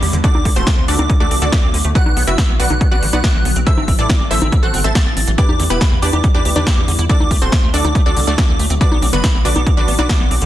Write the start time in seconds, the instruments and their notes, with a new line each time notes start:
Already playing: synth pluck D4 G4 B4 D5, digital synth lead D6, downlifter
0.02 analog synth bass E2, acid bass G4, open hi-hat
0.13 analog synth bass E2, acid bass D3, closed hi-hat
0.24 acid bass A3, synth pluck D4 F#4 A4 D5, digital synth lead D6, kick, closed hi-hat
0.34 analog synth bass D2, acid bass C4, high conga
0.45 analog synth bass D2, acid bass D3, kick, open hi-hat
0.56 analog synth bass D1, acid bass A3, synth pluck C4 F#4 A4 C5, digital synth lead C6, closed hi-hat
0.67 acid bass C4, kick, snare, closed hi-hat
0.77 analog synth bass D2, acid bass D3
0.88 analog synth bass D2, acid bass A3, synth pluck D4 F#4 A4 D5, digital synth lead D6, open hi-hat
0.99 analog synth bass D2, acid bass C4, closed hi-hat, high conga
1.10 acid bass D3, kick, closed hi-hat
1.20 analog synth bass D2, acid bass A3, synth pluck D4 F#4 A4 D5, digital synth lead D6
1.31 analog synth bass C2, acid bass C4, open hi-hat
1.42 analog synth bass D2, acid bass D3, synth pluck D4 F#4 A4 D5, digital synth lead D6, closed hi-hat
1.52 acid bass A3, kick, snare, closed hi-hat
1.63 analog synth bass D2, acid bass C4
1.74 analog synth bass D2, acid bass D3, open hi-hat
1.84 analog synth bass D2, acid bass A3, closed hi-hat
1.95 acid bass C4, synth pluck F#4 B4 D5 F#5, digital synth lead F#6, kick, closed hi-hat
2.06 analog synth bass B1, acid bass D3, high conga
2.17 analog synth bass B1, acid bass B3, open hi-hat
2.27 analog synth bass F#1, acid bass C4, synth pluck E4 F#4 B4 E5, digital synth lead E6, closed hi-hat
2.38 acid bass D3, kick, snare, closed hi-hat
2.49 analog synth bass B1, acid bass B3
2.59 analog synth bass B1, acid bass C4, synth pluck F#4 B4 D5 F#5, digital synth lead F#6, open hi-hat
2.70 analog synth bass B1, acid bass D3, closed hi-hat, high conga
2.81 acid bass B3, kick, closed hi-hat
2.91 analog synth bass B1, acid bass C4, synth pluck F#4 B4 D5 F#5, digital synth lead F#6
3.02 analog synth bass A1, acid bass D3, open hi-hat
3.13 analog synth bass B1, acid bass B3, synth pluck F#4 B4 D5 F#5, digital synth lead F#6, closed hi-hat, high conga
3.24 acid bass C4, kick, snare, closed hi-hat
3.35 analog synth bass B1, acid bass D3
3.45 analog synth bass B1, acid bass B3, open hi-hat
3.56 analog synth bass B1, acid bass C4, closed hi-hat
3.66 acid bass E3, synth pluck E4 A4 C5 E5, digital synth lead E6, kick, closed hi-hat
3.77 analog synth bass A1, acid bass C4, high conga
3.88 analog synth bass A1, acid bass C4, kick, open hi-hat
3.99 analog synth bass A2, acid bass E3, synth pluck D4 E4 A4 D5, digital synth lead D6, closed hi-hat
4.10 acid bass C4, kick, snare, closed hi-hat
4.20 analog synth bass A1, acid bass C4
4.31 analog synth bass A1, acid bass E3, synth pluck E4 A4 C5 E5, digital synth lead E6, open hi-hat
4.42 analog synth bass A1, acid bass C4, closed hi-hat, high conga
4.52 acid bass C4, kick, closed hi-hat
4.63 analog synth bass A1, acid bass E3, synth pluck F#4 A4 C5 F#5, digital synth lead F#6
4.74 analog synth bass G1, acid bass C4, open hi-hat
4.84 analog synth bass A1, acid bass C4, synth pluck A4 C5 E5 A5, digital synth lead A6, closed hi-hat
4.95 acid bass E3, kick, snare, closed hi-hat
5.06 analog synth bass A1, acid bass C4
5.17 analog synth bass A1, acid bass C4, open hi-hat
5.27 analog synth bass A1, acid bass E3, closed hi-hat
5.38 synth pluck D4 G4 B4 D5, acid bass E4, digital synth lead D6, kick, closed hi-hat
5.49 analog synth bass E2, acid bass G4, high conga
5.59 analog synth bass E2, acid bass D3, open hi-hat
5.70 analog synth bass E1, synth pluck B3 E4 G4 B4, acid bass E4, digital synth lead B5, closed hi-hat
5.81 acid bass G4, kick, snare, closed hi-hat
5.92 analog synth bass E2, acid bass D3
6.02 analog synth bass E2, synth pluck D4 G4 B4 D5, acid bass E4, digital synth lead D6, open hi-hat
6.13 analog synth bass E2, acid bass G4, closed hi-hat, high conga
6.24 acid bass D3, kick, closed hi-hat
6.34 analog synth bass E2, synth pluck D4 G4 B4 D5, acid bass E4, digital synth lead D6
6.45 analog synth bass D2, acid bass G4, open hi-hat
6.56 analog synth bass E2, acid bass D3, synth pluck D4 G4 B4 D5, digital synth lead D6, closed hi-hat, high conga
6.67 acid bass E4, kick, snare, closed hi-hat
6.77 analog synth bass E2, acid bass G4
6.88 analog synth bass E2, acid bass D3, open hi-hat
6.99 analog synth bass E2, acid bass E4, closed hi-hat
7.09 acid bass C4, synth pluck D4 F#4 A4 D5, digital synth lead D6, kick, closed hi-hat
7.20 analog synth bass D2, acid bass D3, high conga
7.31 analog synth bass D2, acid bass A3, kick, open hi-hat
7.42 analog synth bass D1, acid bass C4, synth pluck C4 F#4 A4 C5, digital synth lead C6, closed hi-hat
7.52 acid bass D3, kick, snare, closed hi-hat
7.63 analog synth bass D2, acid bass A3
7.74 analog synth bass D2, acid bass C4, synth pluck D4 F#4 A4 D5, digital synth lead D6, open hi-hat
7.84 analog synth bass D2, acid bass D3, closed hi-hat, high conga
7.95 acid bass A3, kick, closed hi-hat
8.06 analog synth bass D2, acid bass C4, synth pluck D4 F#4 A4 D5, digital synth lead D6
8.16 analog synth bass C2, acid bass D3, open hi-hat
8.27 analog synth bass D2, acid bass A3, synth pluck D4 F#4 A4 D5, digital synth lead D6, closed hi-hat
8.38 acid bass C4, kick, snare, closed hi-hat
8.49 analog synth bass D2, acid bass D3
8.59 analog synth bass D2, acid bass A3, open hi-hat
8.70 analog synth bass D2, acid bass C4, closed hi-hat
8.81 acid bass D3, synth pluck D4 F#4 B4 D5, digital synth lead D6, kick, closed hi-hat
8.92 analog synth bass B1, acid bass B3, high conga
9.02 analog synth bass B1, acid bass C4, open hi-hat
9.13 analog synth bass F#1, acid bass D3, synth pluck B3 D4 F#4 B4, digital synth lead B5, closed hi-hat
9.24 acid bass B3, kick, snare, closed hi-hat
9.34 analog synth bass B1, acid bass C4
9.45 analog synth bass B1, acid bass D3, synth pluck D4 F#4 B4 D5, digital synth lead D6, open hi-hat
9.56 analog synth bass B1, acid bass B3, closed hi-hat, high conga
9.67 acid bass C4, kick, closed hi-hat
9.77 analog synth bass B1, acid bass D3, synth pluck D4 F#4 B4 D5, digital synth lead D6
9.88 analog synth bass A1, acid bass B3, open hi-hat
9.99 analog synth bass B1, acid bass C4, synth pluck D4 F#4 B4 D5, digital synth lead D6, closed hi-hat, high conga
10.09 acid bass D3, kick, snare, closed hi-hat
10.20 analog synth bass B1, acid bass B3
10.31 analog synth bass B1, acid bass C4, open hi-hat
10.41 analog synth bass B1, acid bass D3, closed hi-hat